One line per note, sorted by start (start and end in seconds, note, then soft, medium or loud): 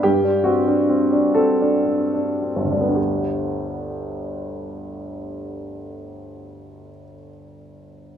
0.03 2.92 G2 soft
0.03 0.44 G4 medium
0.25 0.57 D4 soft
0.44 0.79 C4 soft
0.44 1.34 F#4 medium
0.67 1.02 D4 soft
0.89 1.26 C4 soft
1.12 1.50 D4 soft
1.35 1.75 C4 soft
1.35 2.96 A4 medium
1.62 2.02 D4 soft
1.86 2.12 C4 soft
2.14 2.60 D4 soft
2.42 2.86 C4 soft
2.56 6.88 G1 soft
2.65 6.96 D2 soft
2.71 7.04 G3 soft
2.71 2.87 D4 soft
2.81 7.13 B3 soft
2.88 7.20 D4 soft
2.95 7.27 G4 soft